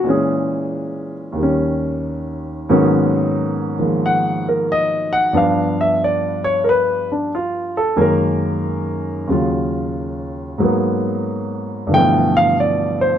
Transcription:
X:1
M:4/4
L:1/8
Q:"Swing" 1/4=91
K:G#dor
V:1 name="Grand piano"
G3 z4 z | z4 f A d f | =f =e =d c [AB] =D =F =A | A6 z2 |
z4 =g =f =d ^B |]
V:2 name="Grand piano" clef=bass
[A,,=E,G,C]4 [D,,D,=G,C]4 | [G,,D,F,A,B,C]3 [D,E,G,A,]4- [D,E,G,A,] | [=G,,=F,B,=D]8 | [F,,D,G,A,]4 [D,,C,F,E]4 |
[G,,F,A,B,]4 [=G,,B,,=D,=E,=F,=A,]4 |]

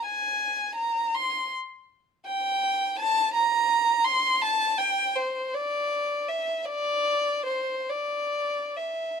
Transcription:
X:1
M:6/8
L:1/8
Q:3/8=54
K:Bb
V:1 name="Violin"
_a2 b c' z2 | [K:Dm] g2 a b2 c' | a g c d2 e | d2 c d2 e |]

